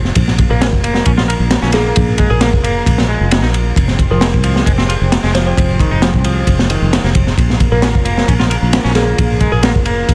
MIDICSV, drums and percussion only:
0, 0, Header, 1, 2, 480
1, 0, Start_track
1, 0, Tempo, 451128
1, 167, Time_signature, 4, 2, 24, 8
1, 10790, End_track
2, 0, Start_track
2, 0, Title_t, "Drums"
2, 52, Note_on_c, 9, 38, 34
2, 158, Note_off_c, 9, 38, 0
2, 164, Note_on_c, 9, 51, 97
2, 170, Note_on_c, 9, 36, 104
2, 270, Note_off_c, 9, 51, 0
2, 277, Note_off_c, 9, 36, 0
2, 296, Note_on_c, 9, 38, 39
2, 402, Note_off_c, 9, 38, 0
2, 409, Note_on_c, 9, 51, 70
2, 416, Note_on_c, 9, 36, 96
2, 515, Note_off_c, 9, 51, 0
2, 523, Note_off_c, 9, 36, 0
2, 654, Note_on_c, 9, 38, 127
2, 656, Note_on_c, 9, 51, 93
2, 761, Note_off_c, 9, 38, 0
2, 762, Note_off_c, 9, 51, 0
2, 774, Note_on_c, 9, 36, 89
2, 880, Note_off_c, 9, 36, 0
2, 893, Note_on_c, 9, 51, 69
2, 999, Note_off_c, 9, 51, 0
2, 1005, Note_on_c, 9, 38, 60
2, 1112, Note_off_c, 9, 38, 0
2, 1123, Note_on_c, 9, 51, 90
2, 1131, Note_on_c, 9, 36, 109
2, 1229, Note_off_c, 9, 51, 0
2, 1237, Note_off_c, 9, 36, 0
2, 1253, Note_on_c, 9, 38, 64
2, 1359, Note_off_c, 9, 38, 0
2, 1381, Note_on_c, 9, 51, 74
2, 1488, Note_off_c, 9, 51, 0
2, 1603, Note_on_c, 9, 38, 127
2, 1603, Note_on_c, 9, 51, 89
2, 1710, Note_off_c, 9, 38, 0
2, 1710, Note_off_c, 9, 51, 0
2, 1729, Note_on_c, 9, 38, 49
2, 1834, Note_on_c, 9, 51, 73
2, 1835, Note_off_c, 9, 38, 0
2, 1847, Note_on_c, 9, 38, 54
2, 1940, Note_off_c, 9, 51, 0
2, 1954, Note_off_c, 9, 38, 0
2, 2083, Note_on_c, 9, 51, 92
2, 2096, Note_on_c, 9, 36, 113
2, 2190, Note_off_c, 9, 51, 0
2, 2203, Note_off_c, 9, 36, 0
2, 2318, Note_on_c, 9, 51, 65
2, 2336, Note_on_c, 9, 36, 91
2, 2424, Note_off_c, 9, 51, 0
2, 2442, Note_off_c, 9, 36, 0
2, 2563, Note_on_c, 9, 38, 109
2, 2563, Note_on_c, 9, 51, 97
2, 2669, Note_off_c, 9, 38, 0
2, 2669, Note_off_c, 9, 51, 0
2, 2697, Note_on_c, 9, 36, 88
2, 2803, Note_off_c, 9, 36, 0
2, 2812, Note_on_c, 9, 51, 64
2, 2919, Note_off_c, 9, 51, 0
2, 3048, Note_on_c, 9, 36, 104
2, 3052, Note_on_c, 9, 51, 95
2, 3154, Note_off_c, 9, 36, 0
2, 3158, Note_off_c, 9, 51, 0
2, 3173, Note_on_c, 9, 38, 58
2, 3279, Note_off_c, 9, 38, 0
2, 3526, Note_on_c, 9, 51, 86
2, 3536, Note_on_c, 9, 38, 122
2, 3633, Note_off_c, 9, 51, 0
2, 3642, Note_off_c, 9, 38, 0
2, 3644, Note_on_c, 9, 38, 52
2, 3750, Note_off_c, 9, 38, 0
2, 3768, Note_on_c, 9, 51, 62
2, 3875, Note_off_c, 9, 51, 0
2, 4004, Note_on_c, 9, 36, 110
2, 4013, Note_on_c, 9, 51, 90
2, 4111, Note_off_c, 9, 36, 0
2, 4120, Note_off_c, 9, 51, 0
2, 4129, Note_on_c, 9, 38, 37
2, 4235, Note_off_c, 9, 38, 0
2, 4244, Note_on_c, 9, 36, 95
2, 4247, Note_on_c, 9, 51, 66
2, 4350, Note_off_c, 9, 36, 0
2, 4353, Note_off_c, 9, 51, 0
2, 4481, Note_on_c, 9, 38, 116
2, 4489, Note_on_c, 9, 51, 98
2, 4587, Note_off_c, 9, 38, 0
2, 4595, Note_off_c, 9, 51, 0
2, 4619, Note_on_c, 9, 36, 84
2, 4719, Note_on_c, 9, 51, 73
2, 4725, Note_off_c, 9, 36, 0
2, 4826, Note_off_c, 9, 51, 0
2, 4852, Note_on_c, 9, 38, 50
2, 4958, Note_off_c, 9, 38, 0
2, 4963, Note_on_c, 9, 36, 123
2, 4968, Note_on_c, 9, 51, 94
2, 5069, Note_off_c, 9, 36, 0
2, 5074, Note_off_c, 9, 51, 0
2, 5089, Note_on_c, 9, 38, 57
2, 5196, Note_off_c, 9, 38, 0
2, 5210, Note_on_c, 9, 51, 71
2, 5316, Note_off_c, 9, 51, 0
2, 5449, Note_on_c, 9, 38, 115
2, 5450, Note_on_c, 9, 51, 96
2, 5555, Note_off_c, 9, 38, 0
2, 5556, Note_off_c, 9, 51, 0
2, 5578, Note_on_c, 9, 38, 49
2, 5684, Note_off_c, 9, 38, 0
2, 5689, Note_on_c, 9, 51, 69
2, 5692, Note_on_c, 9, 38, 51
2, 5796, Note_off_c, 9, 51, 0
2, 5798, Note_off_c, 9, 38, 0
2, 5932, Note_on_c, 9, 36, 110
2, 5938, Note_on_c, 9, 51, 95
2, 6039, Note_off_c, 9, 36, 0
2, 6044, Note_off_c, 9, 51, 0
2, 6166, Note_on_c, 9, 36, 92
2, 6172, Note_on_c, 9, 51, 72
2, 6272, Note_off_c, 9, 36, 0
2, 6279, Note_off_c, 9, 51, 0
2, 6406, Note_on_c, 9, 38, 126
2, 6411, Note_on_c, 9, 51, 90
2, 6513, Note_off_c, 9, 38, 0
2, 6517, Note_off_c, 9, 51, 0
2, 6531, Note_on_c, 9, 36, 84
2, 6638, Note_off_c, 9, 36, 0
2, 6644, Note_on_c, 9, 51, 74
2, 6750, Note_off_c, 9, 51, 0
2, 6885, Note_on_c, 9, 36, 109
2, 6885, Note_on_c, 9, 51, 90
2, 6991, Note_off_c, 9, 36, 0
2, 6992, Note_off_c, 9, 51, 0
2, 7015, Note_on_c, 9, 38, 62
2, 7121, Note_off_c, 9, 38, 0
2, 7127, Note_on_c, 9, 51, 71
2, 7233, Note_off_c, 9, 51, 0
2, 7374, Note_on_c, 9, 38, 110
2, 7375, Note_on_c, 9, 51, 92
2, 7480, Note_off_c, 9, 38, 0
2, 7482, Note_off_c, 9, 51, 0
2, 7496, Note_on_c, 9, 38, 50
2, 7602, Note_off_c, 9, 38, 0
2, 7606, Note_on_c, 9, 51, 71
2, 7610, Note_on_c, 9, 36, 98
2, 7713, Note_off_c, 9, 51, 0
2, 7717, Note_off_c, 9, 36, 0
2, 7735, Note_on_c, 9, 38, 38
2, 7842, Note_off_c, 9, 38, 0
2, 7849, Note_on_c, 9, 36, 118
2, 7856, Note_on_c, 9, 51, 81
2, 7955, Note_off_c, 9, 36, 0
2, 7962, Note_off_c, 9, 51, 0
2, 7981, Note_on_c, 9, 38, 40
2, 8088, Note_off_c, 9, 38, 0
2, 8090, Note_on_c, 9, 36, 94
2, 8090, Note_on_c, 9, 51, 67
2, 8196, Note_off_c, 9, 51, 0
2, 8197, Note_off_c, 9, 36, 0
2, 8323, Note_on_c, 9, 38, 110
2, 8327, Note_on_c, 9, 51, 95
2, 8430, Note_off_c, 9, 38, 0
2, 8434, Note_off_c, 9, 51, 0
2, 8460, Note_on_c, 9, 36, 93
2, 8567, Note_off_c, 9, 36, 0
2, 8570, Note_on_c, 9, 51, 66
2, 8676, Note_off_c, 9, 51, 0
2, 8700, Note_on_c, 9, 38, 55
2, 8807, Note_off_c, 9, 38, 0
2, 8813, Note_on_c, 9, 36, 107
2, 8816, Note_on_c, 9, 51, 88
2, 8919, Note_off_c, 9, 36, 0
2, 8922, Note_off_c, 9, 51, 0
2, 8933, Note_on_c, 9, 38, 59
2, 9039, Note_off_c, 9, 38, 0
2, 9053, Note_on_c, 9, 51, 72
2, 9160, Note_off_c, 9, 51, 0
2, 9289, Note_on_c, 9, 51, 98
2, 9292, Note_on_c, 9, 38, 127
2, 9395, Note_off_c, 9, 51, 0
2, 9398, Note_off_c, 9, 38, 0
2, 9412, Note_on_c, 9, 38, 50
2, 9519, Note_off_c, 9, 38, 0
2, 9523, Note_on_c, 9, 51, 66
2, 9524, Note_on_c, 9, 38, 56
2, 9630, Note_off_c, 9, 51, 0
2, 9631, Note_off_c, 9, 38, 0
2, 9772, Note_on_c, 9, 51, 92
2, 9774, Note_on_c, 9, 36, 125
2, 9879, Note_off_c, 9, 51, 0
2, 9881, Note_off_c, 9, 36, 0
2, 10007, Note_on_c, 9, 51, 59
2, 10009, Note_on_c, 9, 36, 92
2, 10114, Note_off_c, 9, 51, 0
2, 10116, Note_off_c, 9, 36, 0
2, 10246, Note_on_c, 9, 51, 88
2, 10251, Note_on_c, 9, 38, 118
2, 10352, Note_off_c, 9, 51, 0
2, 10358, Note_off_c, 9, 38, 0
2, 10380, Note_on_c, 9, 36, 93
2, 10486, Note_on_c, 9, 51, 62
2, 10487, Note_off_c, 9, 36, 0
2, 10592, Note_off_c, 9, 51, 0
2, 10732, Note_on_c, 9, 36, 113
2, 10734, Note_on_c, 9, 51, 93
2, 10790, Note_off_c, 9, 36, 0
2, 10790, Note_off_c, 9, 51, 0
2, 10790, End_track
0, 0, End_of_file